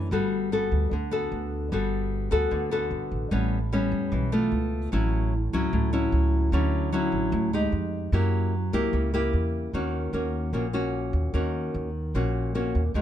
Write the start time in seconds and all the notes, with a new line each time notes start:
0.11 G1 G3 B3 F#4 A4
0.52 B3 F#4 A4
0.72 D2
0.91 D2 D3
1.11 B3 F#4 A4
1.32 D2
1.72 G1 G3 B3 F#4 A4
2.31 D2 B3 F#4 A4
2.51 D2 D3
2.71 B3 F#4 A4
2.91 G1
3.12 A1
3.31 A1 A2 G3 B3 C#4
3.73 G3 B3 C#4
3.92 E2
4.12 B1 E3
4.32 A3 B3 F4
4.52 C#2
4.92 A1 A2 F#3 C#4 E4
5.53 C#2 F#3 C#4 E4
5.73 C#2 A2
5.93 F#3 C#4 E4
6.12 C#2
6.52 D2 D3 F#3 C#4 E4
6.92 F#3 C#4 E4
7.12 A1
7.32 D2 A2
7.53 G#3 D#4 G4
7.72 F2
8.12 F#2 F#3 A#3 E4 G4
8.73 C#2 A#3 E4 G4
8.93 C#2 C#3
9.14 A#3 E4 G4
9.33 E2
9.73 D#2 D#3 A#3 C#4 F#4
10.13 D#2 A#3 C#4 F#4
10.53 A#1 A#2 A#3 C#4 F#4
10.73 A#3 C#4 F#4
11.13 D#2
11.34 D#2 D#3 A#3 C#4 F#4
11.74 D#2
12.14 A#1 A#2 A#3 C#4 F#4
12.55 A#3 C#4 F#4
12.75 D#2
12.94 D#2 D#3 G#3 B3 F#4